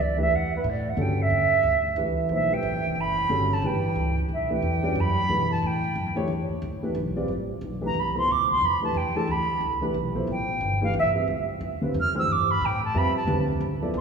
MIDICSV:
0, 0, Header, 1, 5, 480
1, 0, Start_track
1, 0, Tempo, 332779
1, 440, Time_signature, 3, 2, 24, 8
1, 20202, End_track
2, 0, Start_track
2, 0, Title_t, "Flute"
2, 0, Program_c, 0, 73
2, 7, Note_on_c, 0, 74, 86
2, 282, Note_off_c, 0, 74, 0
2, 299, Note_on_c, 0, 76, 90
2, 512, Note_on_c, 0, 78, 82
2, 534, Note_off_c, 0, 76, 0
2, 775, Note_off_c, 0, 78, 0
2, 812, Note_on_c, 0, 71, 49
2, 1003, Note_on_c, 0, 74, 78
2, 1025, Note_off_c, 0, 71, 0
2, 1293, Note_on_c, 0, 78, 88
2, 1314, Note_off_c, 0, 74, 0
2, 1466, Note_on_c, 0, 79, 93
2, 1488, Note_off_c, 0, 78, 0
2, 1759, Note_on_c, 0, 76, 91
2, 1781, Note_off_c, 0, 79, 0
2, 2870, Note_off_c, 0, 76, 0
2, 3371, Note_on_c, 0, 76, 83
2, 3656, Note_on_c, 0, 79, 99
2, 3678, Note_off_c, 0, 76, 0
2, 4335, Note_on_c, 0, 83, 102
2, 4357, Note_off_c, 0, 79, 0
2, 5096, Note_on_c, 0, 81, 90
2, 5117, Note_off_c, 0, 83, 0
2, 5284, Note_on_c, 0, 79, 87
2, 5305, Note_off_c, 0, 81, 0
2, 6038, Note_off_c, 0, 79, 0
2, 6250, Note_on_c, 0, 76, 66
2, 6502, Note_off_c, 0, 76, 0
2, 6533, Note_on_c, 0, 79, 94
2, 7216, Note_on_c, 0, 83, 109
2, 7238, Note_off_c, 0, 79, 0
2, 7950, Note_off_c, 0, 83, 0
2, 7959, Note_on_c, 0, 81, 99
2, 8173, Note_on_c, 0, 79, 98
2, 8194, Note_off_c, 0, 81, 0
2, 8920, Note_off_c, 0, 79, 0
2, 11339, Note_on_c, 0, 82, 96
2, 11532, Note_on_c, 0, 83, 92
2, 11554, Note_off_c, 0, 82, 0
2, 11789, Note_off_c, 0, 83, 0
2, 11798, Note_on_c, 0, 84, 103
2, 11995, Note_on_c, 0, 86, 101
2, 12017, Note_off_c, 0, 84, 0
2, 12270, Note_off_c, 0, 86, 0
2, 12283, Note_on_c, 0, 84, 90
2, 12475, Note_on_c, 0, 83, 98
2, 12497, Note_off_c, 0, 84, 0
2, 12742, Note_off_c, 0, 83, 0
2, 12751, Note_on_c, 0, 81, 89
2, 12941, Note_on_c, 0, 79, 97
2, 12963, Note_off_c, 0, 81, 0
2, 13217, Note_on_c, 0, 81, 95
2, 13239, Note_off_c, 0, 79, 0
2, 13432, Note_on_c, 0, 83, 85
2, 13454, Note_off_c, 0, 81, 0
2, 14188, Note_off_c, 0, 83, 0
2, 14879, Note_on_c, 0, 79, 97
2, 15579, Note_off_c, 0, 79, 0
2, 15631, Note_on_c, 0, 77, 91
2, 15788, Note_off_c, 0, 77, 0
2, 15850, Note_on_c, 0, 76, 92
2, 16011, Note_off_c, 0, 76, 0
2, 17311, Note_on_c, 0, 89, 104
2, 17551, Note_off_c, 0, 89, 0
2, 17574, Note_on_c, 0, 88, 94
2, 17770, Note_on_c, 0, 86, 95
2, 17792, Note_off_c, 0, 88, 0
2, 18040, Note_on_c, 0, 83, 106
2, 18062, Note_off_c, 0, 86, 0
2, 18250, Note_on_c, 0, 79, 94
2, 18271, Note_off_c, 0, 83, 0
2, 18520, Note_off_c, 0, 79, 0
2, 18532, Note_on_c, 0, 81, 96
2, 18715, Note_on_c, 0, 83, 108
2, 18736, Note_off_c, 0, 81, 0
2, 18983, Note_off_c, 0, 83, 0
2, 18992, Note_on_c, 0, 81, 93
2, 19430, Note_off_c, 0, 81, 0
2, 20158, Note_on_c, 0, 84, 98
2, 20202, Note_off_c, 0, 84, 0
2, 20202, End_track
3, 0, Start_track
3, 0, Title_t, "Grand piano"
3, 0, Program_c, 1, 0
3, 239, Note_on_c, 1, 52, 71
3, 252, Note_on_c, 1, 57, 67
3, 252, Note_on_c, 1, 67, 69
3, 253, Note_on_c, 1, 62, 65
3, 256, Note_on_c, 1, 71, 81
3, 412, Note_off_c, 1, 52, 0
3, 418, Note_off_c, 1, 57, 0
3, 418, Note_off_c, 1, 67, 0
3, 419, Note_off_c, 1, 62, 0
3, 420, Note_off_c, 1, 71, 0
3, 1395, Note_on_c, 1, 50, 67
3, 1407, Note_on_c, 1, 61, 58
3, 1408, Note_on_c, 1, 55, 63
3, 1408, Note_on_c, 1, 66, 64
3, 1411, Note_on_c, 1, 69, 73
3, 2116, Note_off_c, 1, 50, 0
3, 2122, Note_off_c, 1, 61, 0
3, 2123, Note_off_c, 1, 55, 0
3, 2123, Note_off_c, 1, 66, 0
3, 2124, Note_off_c, 1, 69, 0
3, 2840, Note_on_c, 1, 52, 63
3, 2847, Note_on_c, 1, 62, 60
3, 2849, Note_on_c, 1, 57, 58
3, 2849, Note_on_c, 1, 67, 60
3, 2851, Note_on_c, 1, 71, 76
3, 3315, Note_on_c, 1, 58, 53
3, 3316, Note_on_c, 1, 53, 55
3, 3325, Note_on_c, 1, 63, 53
3, 3328, Note_on_c, 1, 72, 61
3, 3329, Note_on_c, 1, 68, 54
3, 3558, Note_off_c, 1, 52, 0
3, 3561, Note_off_c, 1, 62, 0
3, 3563, Note_off_c, 1, 57, 0
3, 3563, Note_off_c, 1, 67, 0
3, 3564, Note_off_c, 1, 71, 0
3, 3586, Note_off_c, 1, 53, 0
3, 3586, Note_off_c, 1, 58, 0
3, 3591, Note_off_c, 1, 63, 0
3, 3592, Note_off_c, 1, 72, 0
3, 3593, Note_off_c, 1, 68, 0
3, 3609, Note_on_c, 1, 52, 60
3, 3609, Note_on_c, 1, 57, 54
3, 3611, Note_on_c, 1, 62, 51
3, 3618, Note_on_c, 1, 67, 53
3, 3618, Note_on_c, 1, 71, 65
3, 4645, Note_off_c, 1, 52, 0
3, 4645, Note_off_c, 1, 57, 0
3, 4646, Note_off_c, 1, 62, 0
3, 4649, Note_off_c, 1, 67, 0
3, 4649, Note_off_c, 1, 71, 0
3, 4752, Note_on_c, 1, 50, 72
3, 4752, Note_on_c, 1, 55, 68
3, 4756, Note_on_c, 1, 61, 67
3, 4760, Note_on_c, 1, 69, 84
3, 4764, Note_on_c, 1, 66, 72
3, 5216, Note_off_c, 1, 50, 0
3, 5216, Note_off_c, 1, 55, 0
3, 5218, Note_off_c, 1, 61, 0
3, 5220, Note_off_c, 1, 69, 0
3, 5222, Note_off_c, 1, 66, 0
3, 5239, Note_on_c, 1, 52, 66
3, 5242, Note_on_c, 1, 57, 62
3, 5244, Note_on_c, 1, 62, 62
3, 5247, Note_on_c, 1, 67, 59
3, 5253, Note_on_c, 1, 71, 76
3, 5956, Note_off_c, 1, 52, 0
3, 5958, Note_off_c, 1, 57, 0
3, 5958, Note_off_c, 1, 62, 0
3, 5960, Note_off_c, 1, 67, 0
3, 5963, Note_off_c, 1, 71, 0
3, 6494, Note_on_c, 1, 52, 69
3, 6494, Note_on_c, 1, 62, 67
3, 6495, Note_on_c, 1, 57, 66
3, 6501, Note_on_c, 1, 67, 65
3, 6502, Note_on_c, 1, 71, 76
3, 6943, Note_off_c, 1, 52, 0
3, 6943, Note_off_c, 1, 62, 0
3, 6944, Note_off_c, 1, 57, 0
3, 6947, Note_off_c, 1, 67, 0
3, 6947, Note_off_c, 1, 71, 0
3, 6970, Note_on_c, 1, 61, 70
3, 6972, Note_on_c, 1, 55, 79
3, 6975, Note_on_c, 1, 71, 71
3, 6977, Note_on_c, 1, 66, 72
3, 6983, Note_on_c, 1, 74, 84
3, 7134, Note_off_c, 1, 61, 0
3, 7135, Note_off_c, 1, 55, 0
3, 7137, Note_off_c, 1, 71, 0
3, 7138, Note_off_c, 1, 66, 0
3, 7141, Note_off_c, 1, 74, 0
3, 7629, Note_on_c, 1, 52, 69
3, 7630, Note_on_c, 1, 57, 61
3, 7638, Note_on_c, 1, 67, 59
3, 7639, Note_on_c, 1, 62, 58
3, 7644, Note_on_c, 1, 71, 76
3, 8349, Note_off_c, 1, 52, 0
3, 8349, Note_off_c, 1, 57, 0
3, 8353, Note_off_c, 1, 62, 0
3, 8353, Note_off_c, 1, 67, 0
3, 8356, Note_off_c, 1, 71, 0
3, 8878, Note_on_c, 1, 52, 82
3, 8886, Note_on_c, 1, 57, 80
3, 8888, Note_on_c, 1, 62, 75
3, 8889, Note_on_c, 1, 67, 77
3, 8894, Note_on_c, 1, 73, 97
3, 9047, Note_off_c, 1, 52, 0
3, 9050, Note_off_c, 1, 57, 0
3, 9052, Note_off_c, 1, 62, 0
3, 9052, Note_off_c, 1, 67, 0
3, 9055, Note_off_c, 1, 73, 0
3, 9850, Note_on_c, 1, 52, 75
3, 9850, Note_on_c, 1, 57, 67
3, 9860, Note_on_c, 1, 67, 67
3, 9861, Note_on_c, 1, 62, 67
3, 9861, Note_on_c, 1, 71, 83
3, 10012, Note_off_c, 1, 52, 0
3, 10012, Note_off_c, 1, 57, 0
3, 10017, Note_off_c, 1, 62, 0
3, 10017, Note_off_c, 1, 67, 0
3, 10017, Note_off_c, 1, 71, 0
3, 10322, Note_on_c, 1, 55, 71
3, 10331, Note_on_c, 1, 60, 64
3, 10334, Note_on_c, 1, 65, 70
3, 10335, Note_on_c, 1, 71, 69
3, 10341, Note_on_c, 1, 74, 80
3, 10487, Note_off_c, 1, 55, 0
3, 10492, Note_off_c, 1, 60, 0
3, 10494, Note_off_c, 1, 65, 0
3, 10494, Note_off_c, 1, 71, 0
3, 10497, Note_off_c, 1, 74, 0
3, 11269, Note_on_c, 1, 52, 69
3, 11272, Note_on_c, 1, 57, 67
3, 11273, Note_on_c, 1, 62, 64
3, 11278, Note_on_c, 1, 67, 64
3, 11286, Note_on_c, 1, 71, 73
3, 11441, Note_off_c, 1, 52, 0
3, 11442, Note_off_c, 1, 57, 0
3, 11443, Note_off_c, 1, 62, 0
3, 11445, Note_off_c, 1, 67, 0
3, 11449, Note_off_c, 1, 71, 0
3, 11757, Note_on_c, 1, 53, 62
3, 11758, Note_on_c, 1, 59, 61
3, 11759, Note_on_c, 1, 69, 57
3, 11761, Note_on_c, 1, 64, 55
3, 11767, Note_on_c, 1, 72, 64
3, 11924, Note_off_c, 1, 53, 0
3, 11925, Note_off_c, 1, 59, 0
3, 11925, Note_off_c, 1, 69, 0
3, 11926, Note_off_c, 1, 64, 0
3, 11929, Note_off_c, 1, 72, 0
3, 12717, Note_on_c, 1, 52, 69
3, 12726, Note_on_c, 1, 57, 66
3, 12726, Note_on_c, 1, 62, 60
3, 12728, Note_on_c, 1, 67, 60
3, 12735, Note_on_c, 1, 71, 78
3, 12884, Note_off_c, 1, 52, 0
3, 12889, Note_off_c, 1, 57, 0
3, 12889, Note_off_c, 1, 62, 0
3, 12890, Note_off_c, 1, 67, 0
3, 12893, Note_off_c, 1, 71, 0
3, 13205, Note_on_c, 1, 57, 68
3, 13207, Note_on_c, 1, 52, 81
3, 13213, Note_on_c, 1, 62, 69
3, 13219, Note_on_c, 1, 67, 70
3, 13221, Note_on_c, 1, 69, 83
3, 13368, Note_off_c, 1, 57, 0
3, 13369, Note_off_c, 1, 52, 0
3, 13372, Note_off_c, 1, 62, 0
3, 13375, Note_off_c, 1, 67, 0
3, 13377, Note_off_c, 1, 69, 0
3, 14154, Note_on_c, 1, 52, 77
3, 14164, Note_on_c, 1, 57, 74
3, 14168, Note_on_c, 1, 71, 85
3, 14169, Note_on_c, 1, 62, 69
3, 14170, Note_on_c, 1, 67, 72
3, 14323, Note_off_c, 1, 52, 0
3, 14328, Note_off_c, 1, 57, 0
3, 14330, Note_off_c, 1, 71, 0
3, 14331, Note_off_c, 1, 62, 0
3, 14331, Note_off_c, 1, 67, 0
3, 14638, Note_on_c, 1, 59, 65
3, 14642, Note_on_c, 1, 53, 75
3, 14648, Note_on_c, 1, 64, 67
3, 14650, Note_on_c, 1, 69, 64
3, 14651, Note_on_c, 1, 72, 78
3, 14805, Note_off_c, 1, 59, 0
3, 14807, Note_off_c, 1, 53, 0
3, 14810, Note_off_c, 1, 64, 0
3, 14811, Note_off_c, 1, 69, 0
3, 14812, Note_off_c, 1, 72, 0
3, 15596, Note_on_c, 1, 57, 68
3, 15597, Note_on_c, 1, 52, 70
3, 15604, Note_on_c, 1, 67, 68
3, 15606, Note_on_c, 1, 62, 62
3, 15614, Note_on_c, 1, 71, 76
3, 15765, Note_off_c, 1, 52, 0
3, 15765, Note_off_c, 1, 57, 0
3, 15769, Note_off_c, 1, 67, 0
3, 15770, Note_off_c, 1, 62, 0
3, 15773, Note_off_c, 1, 71, 0
3, 16078, Note_on_c, 1, 55, 71
3, 16086, Note_on_c, 1, 71, 63
3, 16088, Note_on_c, 1, 60, 64
3, 16090, Note_on_c, 1, 65, 62
3, 16093, Note_on_c, 1, 76, 73
3, 16246, Note_off_c, 1, 55, 0
3, 16250, Note_off_c, 1, 71, 0
3, 16251, Note_off_c, 1, 60, 0
3, 16252, Note_off_c, 1, 65, 0
3, 16253, Note_off_c, 1, 76, 0
3, 17041, Note_on_c, 1, 50, 72
3, 17051, Note_on_c, 1, 65, 70
3, 17053, Note_on_c, 1, 55, 67
3, 17053, Note_on_c, 1, 60, 69
3, 17058, Note_on_c, 1, 71, 81
3, 17208, Note_off_c, 1, 50, 0
3, 17213, Note_off_c, 1, 65, 0
3, 17214, Note_off_c, 1, 55, 0
3, 17214, Note_off_c, 1, 60, 0
3, 17216, Note_off_c, 1, 71, 0
3, 17520, Note_on_c, 1, 52, 74
3, 17525, Note_on_c, 1, 57, 74
3, 17528, Note_on_c, 1, 62, 69
3, 17531, Note_on_c, 1, 72, 88
3, 17535, Note_on_c, 1, 67, 76
3, 17688, Note_off_c, 1, 52, 0
3, 17691, Note_off_c, 1, 57, 0
3, 17692, Note_off_c, 1, 62, 0
3, 17694, Note_off_c, 1, 72, 0
3, 17696, Note_off_c, 1, 67, 0
3, 18669, Note_on_c, 1, 55, 73
3, 18674, Note_on_c, 1, 60, 71
3, 18676, Note_on_c, 1, 71, 71
3, 18680, Note_on_c, 1, 65, 71
3, 18680, Note_on_c, 1, 76, 82
3, 18940, Note_off_c, 1, 55, 0
3, 18943, Note_off_c, 1, 60, 0
3, 18944, Note_off_c, 1, 71, 0
3, 18946, Note_off_c, 1, 65, 0
3, 18946, Note_off_c, 1, 76, 0
3, 19145, Note_on_c, 1, 50, 78
3, 19147, Note_on_c, 1, 55, 66
3, 19157, Note_on_c, 1, 71, 87
3, 19159, Note_on_c, 1, 60, 73
3, 19159, Note_on_c, 1, 65, 68
3, 19419, Note_off_c, 1, 50, 0
3, 19420, Note_off_c, 1, 55, 0
3, 19425, Note_off_c, 1, 71, 0
3, 19426, Note_off_c, 1, 60, 0
3, 19426, Note_off_c, 1, 65, 0
3, 19935, Note_on_c, 1, 53, 82
3, 19942, Note_on_c, 1, 59, 69
3, 19943, Note_on_c, 1, 69, 71
3, 19944, Note_on_c, 1, 74, 81
3, 19947, Note_on_c, 1, 64, 75
3, 20202, Note_off_c, 1, 53, 0
3, 20202, Note_off_c, 1, 59, 0
3, 20202, Note_off_c, 1, 64, 0
3, 20202, Note_off_c, 1, 69, 0
3, 20202, Note_off_c, 1, 74, 0
3, 20202, End_track
4, 0, Start_track
4, 0, Title_t, "Upright bass"
4, 0, Program_c, 2, 32
4, 0, Note_on_c, 2, 37, 89
4, 422, Note_off_c, 2, 37, 0
4, 442, Note_on_c, 2, 40, 76
4, 907, Note_off_c, 2, 40, 0
4, 924, Note_on_c, 2, 45, 91
4, 1388, Note_off_c, 2, 45, 0
4, 1398, Note_on_c, 2, 43, 88
4, 1864, Note_off_c, 2, 43, 0
4, 1874, Note_on_c, 2, 40, 81
4, 2343, Note_off_c, 2, 40, 0
4, 2353, Note_on_c, 2, 38, 92
4, 2822, Note_off_c, 2, 38, 0
4, 2828, Note_on_c, 2, 37, 91
4, 3299, Note_off_c, 2, 37, 0
4, 3305, Note_on_c, 2, 35, 81
4, 3777, Note_off_c, 2, 35, 0
4, 3789, Note_on_c, 2, 33, 92
4, 3950, Note_on_c, 2, 31, 54
4, 3972, Note_off_c, 2, 33, 0
4, 4095, Note_off_c, 2, 31, 0
4, 4103, Note_on_c, 2, 28, 67
4, 4255, Note_off_c, 2, 28, 0
4, 4263, Note_on_c, 2, 30, 85
4, 4736, Note_off_c, 2, 30, 0
4, 4748, Note_on_c, 2, 31, 83
4, 5210, Note_off_c, 2, 31, 0
4, 5219, Note_on_c, 2, 33, 91
4, 5693, Note_off_c, 2, 33, 0
4, 5705, Note_on_c, 2, 37, 85
4, 6175, Note_off_c, 2, 37, 0
4, 6184, Note_on_c, 2, 35, 80
4, 6654, Note_off_c, 2, 35, 0
4, 6669, Note_on_c, 2, 40, 85
4, 7137, Note_off_c, 2, 40, 0
4, 7146, Note_on_c, 2, 42, 93
4, 7614, Note_off_c, 2, 42, 0
4, 7629, Note_on_c, 2, 47, 85
4, 8096, Note_off_c, 2, 47, 0
4, 8115, Note_on_c, 2, 45, 90
4, 8578, Note_off_c, 2, 45, 0
4, 8587, Note_on_c, 2, 42, 93
4, 8745, Note_off_c, 2, 42, 0
4, 8745, Note_on_c, 2, 40, 62
4, 8886, Note_off_c, 2, 40, 0
4, 8895, Note_on_c, 2, 38, 66
4, 9044, Note_off_c, 2, 38, 0
4, 9053, Note_on_c, 2, 40, 85
4, 9338, Note_off_c, 2, 40, 0
4, 9546, Note_on_c, 2, 38, 99
4, 9825, Note_off_c, 2, 38, 0
4, 10019, Note_on_c, 2, 35, 96
4, 10489, Note_off_c, 2, 35, 0
4, 10502, Note_on_c, 2, 33, 76
4, 10970, Note_off_c, 2, 33, 0
4, 10979, Note_on_c, 2, 35, 93
4, 11442, Note_off_c, 2, 35, 0
4, 11451, Note_on_c, 2, 36, 91
4, 11924, Note_off_c, 2, 36, 0
4, 11939, Note_on_c, 2, 38, 87
4, 12408, Note_off_c, 2, 38, 0
4, 12420, Note_on_c, 2, 41, 91
4, 12889, Note_off_c, 2, 41, 0
4, 12900, Note_on_c, 2, 40, 92
4, 13181, Note_off_c, 2, 40, 0
4, 13378, Note_on_c, 2, 38, 80
4, 13848, Note_off_c, 2, 38, 0
4, 13855, Note_on_c, 2, 36, 88
4, 14326, Note_off_c, 2, 36, 0
4, 14341, Note_on_c, 2, 35, 93
4, 14810, Note_off_c, 2, 35, 0
4, 14817, Note_on_c, 2, 33, 84
4, 15288, Note_off_c, 2, 33, 0
4, 15300, Note_on_c, 2, 31, 93
4, 15766, Note_off_c, 2, 31, 0
4, 15775, Note_on_c, 2, 35, 95
4, 15936, Note_off_c, 2, 35, 0
4, 15936, Note_on_c, 2, 33, 60
4, 16094, Note_off_c, 2, 33, 0
4, 16103, Note_on_c, 2, 31, 63
4, 16255, Note_off_c, 2, 31, 0
4, 16263, Note_on_c, 2, 38, 84
4, 16544, Note_off_c, 2, 38, 0
4, 16741, Note_on_c, 2, 40, 99
4, 17211, Note_off_c, 2, 40, 0
4, 17227, Note_on_c, 2, 41, 96
4, 17695, Note_off_c, 2, 41, 0
4, 17701, Note_on_c, 2, 43, 82
4, 18172, Note_off_c, 2, 43, 0
4, 18192, Note_on_c, 2, 45, 94
4, 18659, Note_off_c, 2, 45, 0
4, 18669, Note_on_c, 2, 41, 92
4, 19138, Note_off_c, 2, 41, 0
4, 19147, Note_on_c, 2, 38, 91
4, 19617, Note_off_c, 2, 38, 0
4, 19626, Note_on_c, 2, 33, 98
4, 20098, Note_off_c, 2, 33, 0
4, 20104, Note_on_c, 2, 36, 97
4, 20202, Note_off_c, 2, 36, 0
4, 20202, End_track
5, 0, Start_track
5, 0, Title_t, "Muted upright bass strokes"
5, 9358, Note_on_c, 9, 29, 43
5, 9503, Note_off_c, 9, 29, 0
5, 9845, Note_on_c, 9, 29, 43
5, 9989, Note_off_c, 9, 29, 0
5, 13197, Note_on_c, 9, 29, 39
5, 13341, Note_off_c, 9, 29, 0
5, 16568, Note_on_c, 9, 29, 45
5, 16712, Note_off_c, 9, 29, 0
5, 20202, End_track
0, 0, End_of_file